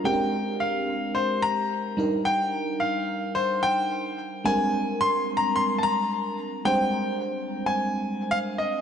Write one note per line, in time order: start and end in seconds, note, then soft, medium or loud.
0.04 1.93 G#3 medium
0.04 1.94 C4 medium
0.04 0.14 C#4 soft
0.04 1.94 G4 medium
0.04 1.95 A#4 medium
0.04 0.62 G5 medium
0.12 1.97 D4 medium
0.60 1.17 F5 medium
1.15 1.43 C5 medium
1.42 2.21 A#5 loud
1.97 4.14 G3 medium
1.97 4.14 D4 medium
1.97 4.14 D#4 medium
1.97 4.15 A#4 medium
2.25 2.82 G5 loud
2.80 3.31 F5 medium
3.35 3.63 C5 loud
3.63 4.48 G5 loud
4.44 6.62 G3 medium
4.44 6.61 G#3 medium
4.44 6.62 C4 medium
4.44 6.62 D4 medium
4.44 6.62 A#4 medium
4.44 5.02 G#5 loud
5.01 5.38 C6 loud
5.37 5.56 A#5 loud
5.56 5.77 C6 loud
5.78 5.83 A5 medium
5.83 6.68 A#5 loud
6.65 8.81 G3 medium
6.65 8.81 G#3 medium
6.65 8.81 C4 medium
6.65 8.81 D4 medium
6.65 8.81 C5 medium
6.65 7.69 G5 loud
7.66 8.54 G#5 medium
8.31 8.37 F5 loud
8.58 8.81 D#5 medium